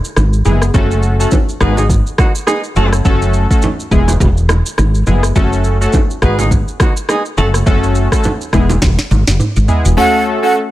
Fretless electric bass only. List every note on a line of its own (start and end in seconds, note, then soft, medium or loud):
0.17 0.41 G#1 medium
0.45 0.70 F#1 loud
0.74 1.24 F#1 loud
1.61 2.00 G#1 loud
2.76 3.01 F#1 loud
3.05 3.44 F#1 loud
3.91 4.16 E1 loud
4.20 4.60 E1 loud
4.78 5.03 G#1 medium
5.07 5.32 F#1 medium
5.36 5.86 F#1 loud
6.22 6.62 G#1 loud
7.38 7.63 F#1 loud
7.66 8.06 F#1 loud
8.53 8.78 E1 medium
8.82 8.96 E1 loud
9.11 9.25 G#1 medium
9.27 9.38 F#1 medium
9.56 9.67 G#1 medium
9.85 9.96 E1 medium